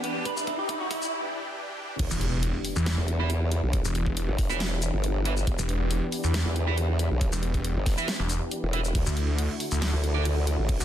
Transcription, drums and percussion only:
0.04 closed hi-hat
0.25 kick, closed hi-hat
0.37 shaker
0.47 kick, closed hi-hat
0.69 kick, closed hi-hat
0.91 kick, open hi-hat
1.02 shaker
1.99 kick, closed hi-hat, crash
2.11 shaker
2.21 closed hi-hat
2.43 closed hi-hat
2.65 open hi-hat
2.76 shaker
2.86 snare, closed hi-hat
3.08 closed hi-hat
3.30 closed hi-hat
3.52 closed hi-hat
3.73 kick, closed hi-hat
3.85 shaker
3.95 closed hi-hat
4.06 kick
4.17 closed hi-hat
4.38 kick, open hi-hat
4.50 shaker
4.60 snare, closed hi-hat
4.82 closed hi-hat, shaker
5.04 closed hi-hat
5.25 closed hi-hat
5.37 shaker
5.47 kick, closed hi-hat
5.59 shaker
5.69 closed hi-hat
5.91 closed hi-hat
6.12 open hi-hat
6.24 shaker
6.34 snare, closed hi-hat
6.56 closed hi-hat
6.78 closed hi-hat
6.99 closed hi-hat
7.21 kick, closed hi-hat
7.32 shaker
7.43 closed hi-hat
7.54 kick, closed hi-hat
7.64 closed hi-hat
7.86 kick, snare, open hi-hat
7.98 shaker
8.08 snare, closed hi-hat
8.30 closed hi-hat, shaker
8.51 closed hi-hat
8.73 closed hi-hat
8.85 shaker
8.95 kick, closed hi-hat, crash
9.06 shaker
9.17 closed hi-hat
9.38 closed hi-hat, crash
9.60 open hi-hat
9.72 shaker
9.82 snare, closed hi-hat, crash
10.04 closed hi-hat
10.25 closed hi-hat, crash
10.47 closed hi-hat
10.69 kick, closed hi-hat, crash
10.80 shaker

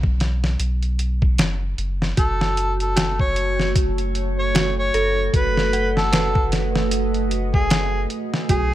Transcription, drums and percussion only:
0.03 kick
0.20 snare, closed hi-hat
0.44 snare
0.60 closed hi-hat
0.83 closed hi-hat
0.99 closed hi-hat
1.22 kick
1.38 snare, closed hi-hat
1.78 closed hi-hat
2.02 snare
2.17 kick, closed hi-hat
2.41 snare
2.57 closed hi-hat
2.80 closed hi-hat
2.97 snare, closed hi-hat
3.19 kick
3.36 closed hi-hat
3.60 snare
3.76 kick, closed hi-hat
3.98 closed hi-hat
4.15 closed hi-hat
4.55 snare, closed hi-hat
4.94 closed hi-hat
5.34 kick, closed hi-hat
5.57 snare
5.73 closed hi-hat
5.97 snare
6.13 snare, closed hi-hat
6.35 kick
6.52 snare, closed hi-hat
6.76 snare
6.91 closed hi-hat
7.14 closed hi-hat
7.31 closed hi-hat
7.54 kick
7.70 snare, closed hi-hat
8.10 closed hi-hat
8.34 snare
8.49 kick, closed hi-hat

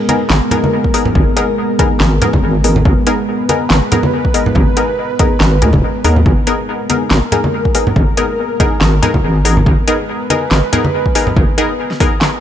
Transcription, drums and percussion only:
0.09 closed hi-hat, high conga
0.30 snare, clap
0.51 closed hi-hat, low conga
0.64 high conga
0.84 kick
0.94 open hi-hat
1.05 low conga
1.15 kick, high conga
1.37 closed hi-hat
1.79 kick, closed hi-hat, high conga
2.00 snare, clap
2.22 closed hi-hat, low conga
2.33 kick, high conga
2.64 open hi-hat
2.76 low conga
2.85 kick, high conga
3.07 closed hi-hat
3.49 closed hi-hat, high conga
3.70 snare, clap
3.92 closed hi-hat, low conga
4.03 high conga
4.25 kick
4.34 open hi-hat
4.46 low conga
4.55 kick, high conga
4.77 closed hi-hat
5.19 kick, closed hi-hat, high conga
5.41 snare, clap
5.62 closed hi-hat, low conga
5.73 kick, high conga
6.04 open hi-hat
6.16 low conga
6.26 kick, high conga
6.47 closed hi-hat
6.90 closed hi-hat, high conga
7.11 snare, clap
7.32 closed hi-hat, low conga
7.44 high conga
7.65 kick
7.75 open hi-hat
7.87 low conga
7.96 kick, high conga
8.17 closed hi-hat
8.60 kick, closed hi-hat, high conga
8.81 snare, clap
9.03 closed hi-hat, low conga
9.14 kick, high conga
9.45 open hi-hat
9.57 low conga
9.66 kick, high conga
9.88 closed hi-hat
10.30 closed hi-hat, high conga
10.51 snare, clap
10.73 closed hi-hat, low conga
10.85 high conga
11.06 kick
11.15 open hi-hat
11.27 low conga
11.36 kick, high conga
11.58 closed hi-hat
11.91 snare
12.00 kick, open hi-hat, high conga
12.22 snare, clap

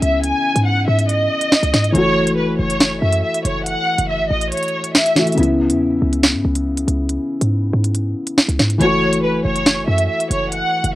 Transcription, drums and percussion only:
0.02 closed hi-hat
0.24 closed hi-hat
0.56 closed hi-hat
0.99 closed hi-hat
1.09 closed hi-hat
1.41 closed hi-hat
1.52 snare
1.63 closed hi-hat
1.74 snare, closed hi-hat
1.84 closed hi-hat
1.95 closed hi-hat
2.27 closed hi-hat
2.70 closed hi-hat
2.80 snare, closed hi-hat
3.12 closed hi-hat
3.34 closed hi-hat
3.45 closed hi-hat
3.66 closed hi-hat
3.98 closed hi-hat
4.41 closed hi-hat
4.52 closed hi-hat
4.57 closed hi-hat
4.63 closed hi-hat
4.68 closed hi-hat
4.84 closed hi-hat
4.95 snare
5.06 closed hi-hat
5.16 snare, closed hi-hat
5.27 closed hi-hat
5.32 closed hi-hat
5.38 closed hi-hat
5.43 closed hi-hat
5.70 closed hi-hat
6.13 closed hi-hat
6.23 snare, closed hi-hat
6.55 closed hi-hat
6.77 closed hi-hat
6.88 closed hi-hat
7.09 closed hi-hat
7.41 closed hi-hat
7.84 closed hi-hat
7.95 closed hi-hat
8.27 closed hi-hat
8.38 snare
8.49 closed hi-hat
8.59 snare, closed hi-hat
8.70 closed hi-hat
8.81 closed hi-hat
9.13 closed hi-hat
9.56 closed hi-hat
9.66 snare, closed hi-hat
9.98 closed hi-hat
10.20 closed hi-hat
10.31 closed hi-hat
10.52 closed hi-hat
10.84 closed hi-hat

